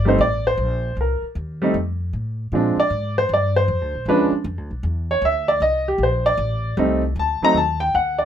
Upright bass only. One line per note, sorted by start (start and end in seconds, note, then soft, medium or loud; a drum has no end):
0.00 0.18 G1 medium
0.18 0.56 A1 medium
0.57 0.95 A#1 medium
0.97 1.20 C2 medium
1.22 muted upright bass stroke soft
1.35 1.73 D#2 medium
1.74 2.12 F2 medium
2.13 2.51 A2 medium
2.52 2.75 A#2 medium
2.76 muted upright bass stroke soft
2.90 3.28 G#2 medium
3.29 3.67 G2 medium
3.68 3.81 F2 medium
3.81 3.94 D2 medium
3.95 4.05 A#1 medium
4.06 4.30 D2 medium
4.31 muted upright bass stroke soft
4.44 4.57 F2 medium
4.57 4.70 D2 medium
4.71 4.83 B1 medium
4.83 5.21 E2 medium
5.22 5.60 D2 medium
5.60 5.98 C2 medium
5.98 6.37 A#1 medium
6.37 6.76 A1 medium
6.77 7.15 C2 medium
7.16 7.40 D2 medium
7.41 muted upright bass stroke soft
7.54 7.92 D#2 medium
7.94 8.25 D2 medium